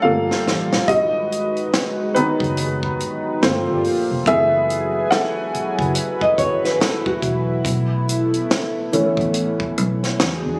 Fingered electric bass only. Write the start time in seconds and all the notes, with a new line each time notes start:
0.05 G1
0.47 A1
0.73 A#1
0.89 G#1
2.16 muted fingered electric bass stroke
2.41 F#1
3.01 G#1
3.43 G1
3.69 G1
4.11 F1
4.27 F#1
5.55 muted fingered electric bass stroke
5.80 F#1
6.39 G#1
7.23 E1
7.65 B1
8.94 muted fingered electric bass stroke
9.18 A1
9.77 B1
10.20 E2
10.46 E2